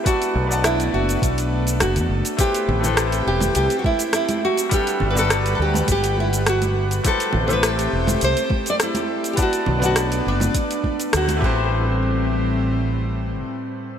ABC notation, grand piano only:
X:1
M:4/4
L:1/16
Q:"Swing 16ths" 1/4=103
K:Ador
V:1 name="Grand piano"
[B,Bdfa]3 [B,Bdfa]12- [B,Bdfa] | [A,EGBc]3 [A,EGBc]12- [A,EGBc] | [G,DABf]3 [G,DFAB]12- [G,DFAB] | [A,EGBc]3 [A,EGAc]12- [A,EGAc] |
[B,Bdfa]3 [B,Bdfa]8- [B,Bdfa]3 [A,EGBc]2- | [A,EGBc]16 |]